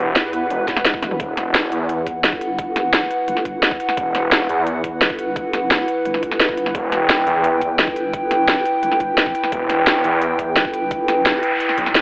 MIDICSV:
0, 0, Header, 1, 7, 480
1, 0, Start_track
1, 0, Key_signature, 1, "minor"
1, 0, Tempo, 346821
1, 1658, Time_signature, 4, 2, 24, 8
1, 16627, End_track
2, 0, Start_track
2, 0, Title_t, "Analog synth pad"
2, 0, Program_c, 0, 89
2, 0, Note_on_c, 0, 64, 79
2, 0, Note_on_c, 0, 71, 73
2, 0, Note_on_c, 0, 78, 88
2, 1603, Note_off_c, 0, 64, 0
2, 1603, Note_off_c, 0, 71, 0
2, 1644, Note_off_c, 0, 78, 0
2, 1658, Note_on_c, 0, 64, 80
2, 1658, Note_on_c, 0, 71, 73
2, 1658, Note_on_c, 0, 78, 88
2, 9307, Note_off_c, 0, 78, 0
2, 9339, Note_on_c, 0, 79, 88
2, 16627, Note_off_c, 0, 64, 0
2, 16627, Note_off_c, 0, 71, 0
2, 16627, Note_off_c, 0, 79, 0
2, 16627, End_track
3, 0, Start_track
3, 0, Title_t, "Ambient pad"
3, 0, Program_c, 1, 92
3, 0, Note_on_c, 1, 64, 93
3, 0, Note_on_c, 1, 71, 74
3, 1659, Note_off_c, 1, 64, 0
3, 1683, Note_off_c, 1, 71, 0
3, 16627, End_track
4, 0, Start_track
4, 0, Title_t, "Wobble bass"
4, 0, Program_c, 2, 39
4, 218, Note_on_c, 2, 40, 99
4, 679, Note_off_c, 2, 40, 0
4, 1418, Note_on_c, 2, 28, 96
4, 1639, Note_off_c, 2, 28, 0
4, 3098, Note_on_c, 2, 31, 101
4, 4279, Note_off_c, 2, 31, 0
4, 4538, Note_on_c, 2, 31, 98
4, 5239, Note_off_c, 2, 31, 0
4, 6938, Note_on_c, 2, 31, 98
4, 8119, Note_off_c, 2, 31, 0
4, 8378, Note_on_c, 2, 31, 96
4, 9319, Note_off_c, 2, 31, 0
4, 10779, Note_on_c, 2, 31, 103
4, 11609, Note_off_c, 2, 31, 0
4, 11609, Note_on_c, 2, 30, 103
4, 11959, Note_off_c, 2, 30, 0
4, 12219, Note_on_c, 2, 31, 97
4, 12919, Note_off_c, 2, 31, 0
4, 14618, Note_on_c, 2, 31, 99
4, 15449, Note_off_c, 2, 31, 0
4, 15449, Note_on_c, 2, 30, 99
4, 15799, Note_off_c, 2, 30, 0
4, 16627, End_track
5, 0, Start_track
5, 0, Title_t, "Detuned saw bass"
5, 0, Program_c, 3, 39
5, 0, Note_on_c, 3, 28, 99
5, 199, Note_off_c, 3, 28, 0
5, 698, Note_on_c, 3, 28, 96
5, 1399, Note_off_c, 3, 28, 0
5, 1658, Note_on_c, 3, 28, 98
5, 2359, Note_off_c, 3, 28, 0
5, 2378, Note_on_c, 3, 40, 95
5, 3079, Note_off_c, 3, 40, 0
5, 5498, Note_on_c, 3, 28, 99
5, 6199, Note_off_c, 3, 28, 0
5, 6218, Note_on_c, 3, 40, 99
5, 6919, Note_off_c, 3, 40, 0
5, 9339, Note_on_c, 3, 28, 101
5, 10040, Note_off_c, 3, 28, 0
5, 10058, Note_on_c, 3, 40, 99
5, 10759, Note_off_c, 3, 40, 0
5, 13179, Note_on_c, 3, 28, 101
5, 13879, Note_off_c, 3, 28, 0
5, 13898, Note_on_c, 3, 40, 96
5, 14599, Note_off_c, 3, 40, 0
5, 16299, Note_on_c, 3, 35, 97
5, 16627, Note_off_c, 3, 35, 0
5, 16627, End_track
6, 0, Start_track
6, 0, Title_t, "Noise sweep"
6, 0, Program_c, 4, 103
6, 15098, Note_on_c, 4, 60, 61
6, 16627, Note_off_c, 4, 60, 0
6, 16627, End_track
7, 0, Start_track
7, 0, Title_t, "Drums"
7, 219, Note_on_c, 9, 38, 119
7, 219, Note_on_c, 9, 42, 102
7, 357, Note_off_c, 9, 38, 0
7, 357, Note_off_c, 9, 42, 0
7, 459, Note_on_c, 9, 42, 71
7, 597, Note_off_c, 9, 42, 0
7, 699, Note_on_c, 9, 42, 95
7, 837, Note_off_c, 9, 42, 0
7, 938, Note_on_c, 9, 36, 62
7, 939, Note_on_c, 9, 38, 37
7, 939, Note_on_c, 9, 42, 70
7, 1059, Note_on_c, 9, 40, 58
7, 1077, Note_off_c, 9, 36, 0
7, 1077, Note_off_c, 9, 38, 0
7, 1077, Note_off_c, 9, 42, 0
7, 1179, Note_on_c, 9, 38, 111
7, 1179, Note_on_c, 9, 42, 96
7, 1198, Note_off_c, 9, 40, 0
7, 1298, Note_on_c, 9, 36, 108
7, 1318, Note_off_c, 9, 38, 0
7, 1318, Note_off_c, 9, 42, 0
7, 1419, Note_on_c, 9, 40, 36
7, 1419, Note_on_c, 9, 42, 73
7, 1419, Note_on_c, 9, 48, 62
7, 1437, Note_off_c, 9, 36, 0
7, 1539, Note_on_c, 9, 47, 76
7, 1558, Note_off_c, 9, 40, 0
7, 1558, Note_off_c, 9, 42, 0
7, 1558, Note_off_c, 9, 48, 0
7, 1658, Note_on_c, 9, 36, 119
7, 1659, Note_on_c, 9, 42, 92
7, 1678, Note_off_c, 9, 47, 0
7, 1797, Note_off_c, 9, 36, 0
7, 1798, Note_off_c, 9, 42, 0
7, 1899, Note_on_c, 9, 40, 38
7, 1899, Note_on_c, 9, 42, 71
7, 2038, Note_off_c, 9, 40, 0
7, 2038, Note_off_c, 9, 42, 0
7, 2139, Note_on_c, 9, 38, 124
7, 2139, Note_on_c, 9, 42, 100
7, 2278, Note_off_c, 9, 38, 0
7, 2278, Note_off_c, 9, 42, 0
7, 2379, Note_on_c, 9, 42, 68
7, 2518, Note_off_c, 9, 42, 0
7, 2619, Note_on_c, 9, 42, 91
7, 2758, Note_off_c, 9, 42, 0
7, 2858, Note_on_c, 9, 36, 62
7, 2859, Note_on_c, 9, 42, 72
7, 2997, Note_off_c, 9, 36, 0
7, 2997, Note_off_c, 9, 42, 0
7, 3098, Note_on_c, 9, 38, 117
7, 3098, Note_on_c, 9, 42, 96
7, 3218, Note_on_c, 9, 36, 109
7, 3237, Note_off_c, 9, 38, 0
7, 3237, Note_off_c, 9, 42, 0
7, 3338, Note_on_c, 9, 42, 72
7, 3357, Note_off_c, 9, 36, 0
7, 3477, Note_off_c, 9, 42, 0
7, 3578, Note_on_c, 9, 36, 123
7, 3579, Note_on_c, 9, 42, 92
7, 3717, Note_off_c, 9, 36, 0
7, 3717, Note_off_c, 9, 42, 0
7, 3819, Note_on_c, 9, 40, 39
7, 3819, Note_on_c, 9, 42, 71
7, 3957, Note_off_c, 9, 40, 0
7, 3957, Note_off_c, 9, 42, 0
7, 4059, Note_on_c, 9, 38, 126
7, 4059, Note_on_c, 9, 42, 100
7, 4197, Note_off_c, 9, 38, 0
7, 4197, Note_off_c, 9, 42, 0
7, 4299, Note_on_c, 9, 42, 66
7, 4438, Note_off_c, 9, 42, 0
7, 4539, Note_on_c, 9, 42, 93
7, 4659, Note_on_c, 9, 40, 35
7, 4677, Note_off_c, 9, 42, 0
7, 4779, Note_on_c, 9, 36, 62
7, 4779, Note_on_c, 9, 42, 70
7, 4797, Note_off_c, 9, 40, 0
7, 4917, Note_off_c, 9, 36, 0
7, 4917, Note_off_c, 9, 42, 0
7, 5019, Note_on_c, 9, 38, 121
7, 5019, Note_on_c, 9, 42, 91
7, 5139, Note_on_c, 9, 36, 112
7, 5157, Note_off_c, 9, 38, 0
7, 5157, Note_off_c, 9, 42, 0
7, 5259, Note_on_c, 9, 42, 69
7, 5277, Note_off_c, 9, 36, 0
7, 5379, Note_on_c, 9, 40, 37
7, 5397, Note_off_c, 9, 42, 0
7, 5499, Note_on_c, 9, 36, 127
7, 5499, Note_on_c, 9, 42, 87
7, 5517, Note_off_c, 9, 40, 0
7, 5637, Note_off_c, 9, 36, 0
7, 5637, Note_off_c, 9, 42, 0
7, 5739, Note_on_c, 9, 40, 39
7, 5739, Note_on_c, 9, 42, 66
7, 5878, Note_off_c, 9, 40, 0
7, 5878, Note_off_c, 9, 42, 0
7, 5979, Note_on_c, 9, 38, 127
7, 5979, Note_on_c, 9, 42, 94
7, 6117, Note_off_c, 9, 38, 0
7, 6117, Note_off_c, 9, 42, 0
7, 6219, Note_on_c, 9, 42, 66
7, 6357, Note_off_c, 9, 42, 0
7, 6459, Note_on_c, 9, 42, 86
7, 6597, Note_off_c, 9, 42, 0
7, 6699, Note_on_c, 9, 36, 63
7, 6699, Note_on_c, 9, 42, 68
7, 6837, Note_off_c, 9, 36, 0
7, 6837, Note_off_c, 9, 42, 0
7, 6939, Note_on_c, 9, 38, 125
7, 6939, Note_on_c, 9, 42, 88
7, 7059, Note_on_c, 9, 36, 116
7, 7077, Note_off_c, 9, 38, 0
7, 7077, Note_off_c, 9, 42, 0
7, 7179, Note_on_c, 9, 42, 65
7, 7197, Note_off_c, 9, 36, 0
7, 7317, Note_off_c, 9, 42, 0
7, 7419, Note_on_c, 9, 36, 122
7, 7419, Note_on_c, 9, 42, 83
7, 7557, Note_off_c, 9, 36, 0
7, 7557, Note_off_c, 9, 42, 0
7, 7659, Note_on_c, 9, 40, 37
7, 7659, Note_on_c, 9, 42, 65
7, 7797, Note_off_c, 9, 40, 0
7, 7797, Note_off_c, 9, 42, 0
7, 7899, Note_on_c, 9, 38, 126
7, 7899, Note_on_c, 9, 42, 89
7, 8037, Note_off_c, 9, 38, 0
7, 8037, Note_off_c, 9, 42, 0
7, 8139, Note_on_c, 9, 42, 63
7, 8277, Note_off_c, 9, 42, 0
7, 8379, Note_on_c, 9, 42, 86
7, 8499, Note_on_c, 9, 40, 32
7, 8517, Note_off_c, 9, 42, 0
7, 8619, Note_on_c, 9, 36, 66
7, 8619, Note_on_c, 9, 42, 64
7, 8638, Note_off_c, 9, 40, 0
7, 8739, Note_on_c, 9, 40, 34
7, 8757, Note_off_c, 9, 36, 0
7, 8758, Note_off_c, 9, 42, 0
7, 8859, Note_on_c, 9, 38, 122
7, 8859, Note_on_c, 9, 42, 85
7, 8878, Note_off_c, 9, 40, 0
7, 8979, Note_on_c, 9, 36, 116
7, 8998, Note_off_c, 9, 38, 0
7, 8998, Note_off_c, 9, 42, 0
7, 9099, Note_on_c, 9, 42, 66
7, 9117, Note_off_c, 9, 36, 0
7, 9219, Note_on_c, 9, 40, 35
7, 9237, Note_off_c, 9, 42, 0
7, 9339, Note_on_c, 9, 36, 114
7, 9339, Note_on_c, 9, 42, 85
7, 9357, Note_off_c, 9, 40, 0
7, 9477, Note_off_c, 9, 36, 0
7, 9478, Note_off_c, 9, 42, 0
7, 9579, Note_on_c, 9, 40, 35
7, 9579, Note_on_c, 9, 42, 66
7, 9718, Note_off_c, 9, 40, 0
7, 9718, Note_off_c, 9, 42, 0
7, 9819, Note_on_c, 9, 38, 122
7, 9819, Note_on_c, 9, 42, 91
7, 9958, Note_off_c, 9, 38, 0
7, 9958, Note_off_c, 9, 42, 0
7, 10059, Note_on_c, 9, 42, 64
7, 10197, Note_off_c, 9, 42, 0
7, 10299, Note_on_c, 9, 42, 86
7, 10438, Note_off_c, 9, 42, 0
7, 10539, Note_on_c, 9, 36, 64
7, 10539, Note_on_c, 9, 42, 65
7, 10677, Note_off_c, 9, 36, 0
7, 10678, Note_off_c, 9, 42, 0
7, 10779, Note_on_c, 9, 38, 121
7, 10779, Note_on_c, 9, 42, 88
7, 10899, Note_on_c, 9, 36, 111
7, 10918, Note_off_c, 9, 38, 0
7, 10918, Note_off_c, 9, 42, 0
7, 11019, Note_on_c, 9, 42, 66
7, 11037, Note_off_c, 9, 36, 0
7, 11158, Note_off_c, 9, 42, 0
7, 11259, Note_on_c, 9, 36, 115
7, 11259, Note_on_c, 9, 42, 88
7, 11397, Note_off_c, 9, 36, 0
7, 11398, Note_off_c, 9, 42, 0
7, 11499, Note_on_c, 9, 40, 37
7, 11499, Note_on_c, 9, 42, 69
7, 11638, Note_off_c, 9, 40, 0
7, 11638, Note_off_c, 9, 42, 0
7, 11739, Note_on_c, 9, 38, 120
7, 11739, Note_on_c, 9, 42, 93
7, 11877, Note_off_c, 9, 38, 0
7, 11877, Note_off_c, 9, 42, 0
7, 11979, Note_on_c, 9, 42, 64
7, 12117, Note_off_c, 9, 42, 0
7, 12218, Note_on_c, 9, 42, 90
7, 12338, Note_on_c, 9, 40, 31
7, 12357, Note_off_c, 9, 42, 0
7, 12458, Note_on_c, 9, 42, 66
7, 12459, Note_on_c, 9, 36, 60
7, 12477, Note_off_c, 9, 40, 0
7, 12597, Note_off_c, 9, 36, 0
7, 12597, Note_off_c, 9, 42, 0
7, 12698, Note_on_c, 9, 38, 113
7, 12698, Note_on_c, 9, 42, 92
7, 12819, Note_on_c, 9, 36, 106
7, 12837, Note_off_c, 9, 38, 0
7, 12837, Note_off_c, 9, 42, 0
7, 12938, Note_on_c, 9, 42, 69
7, 12957, Note_off_c, 9, 36, 0
7, 13059, Note_on_c, 9, 40, 33
7, 13077, Note_off_c, 9, 42, 0
7, 13178, Note_on_c, 9, 42, 92
7, 13179, Note_on_c, 9, 36, 109
7, 13197, Note_off_c, 9, 40, 0
7, 13317, Note_off_c, 9, 36, 0
7, 13317, Note_off_c, 9, 42, 0
7, 13419, Note_on_c, 9, 40, 37
7, 13419, Note_on_c, 9, 42, 73
7, 13557, Note_off_c, 9, 40, 0
7, 13557, Note_off_c, 9, 42, 0
7, 13658, Note_on_c, 9, 38, 116
7, 13658, Note_on_c, 9, 42, 100
7, 13797, Note_off_c, 9, 38, 0
7, 13797, Note_off_c, 9, 42, 0
7, 13899, Note_on_c, 9, 42, 69
7, 14037, Note_off_c, 9, 42, 0
7, 14139, Note_on_c, 9, 42, 92
7, 14277, Note_off_c, 9, 42, 0
7, 14379, Note_on_c, 9, 36, 60
7, 14379, Note_on_c, 9, 42, 69
7, 14517, Note_off_c, 9, 36, 0
7, 14517, Note_off_c, 9, 42, 0
7, 14619, Note_on_c, 9, 38, 110
7, 14619, Note_on_c, 9, 42, 95
7, 14738, Note_on_c, 9, 36, 104
7, 14757, Note_off_c, 9, 38, 0
7, 14757, Note_off_c, 9, 42, 0
7, 14859, Note_on_c, 9, 42, 71
7, 14877, Note_off_c, 9, 36, 0
7, 14997, Note_off_c, 9, 42, 0
7, 15098, Note_on_c, 9, 36, 114
7, 15098, Note_on_c, 9, 42, 96
7, 15237, Note_off_c, 9, 36, 0
7, 15237, Note_off_c, 9, 42, 0
7, 15339, Note_on_c, 9, 40, 38
7, 15339, Note_on_c, 9, 42, 73
7, 15477, Note_off_c, 9, 40, 0
7, 15477, Note_off_c, 9, 42, 0
7, 15579, Note_on_c, 9, 38, 123
7, 15579, Note_on_c, 9, 42, 102
7, 15717, Note_off_c, 9, 38, 0
7, 15717, Note_off_c, 9, 42, 0
7, 15818, Note_on_c, 9, 42, 69
7, 15957, Note_off_c, 9, 42, 0
7, 16059, Note_on_c, 9, 42, 93
7, 16179, Note_on_c, 9, 40, 35
7, 16197, Note_off_c, 9, 42, 0
7, 16299, Note_on_c, 9, 36, 62
7, 16299, Note_on_c, 9, 42, 69
7, 16317, Note_off_c, 9, 40, 0
7, 16419, Note_on_c, 9, 40, 34
7, 16437, Note_off_c, 9, 36, 0
7, 16437, Note_off_c, 9, 42, 0
7, 16539, Note_on_c, 9, 38, 114
7, 16539, Note_on_c, 9, 42, 95
7, 16557, Note_off_c, 9, 40, 0
7, 16627, Note_off_c, 9, 38, 0
7, 16627, Note_off_c, 9, 42, 0
7, 16627, End_track
0, 0, End_of_file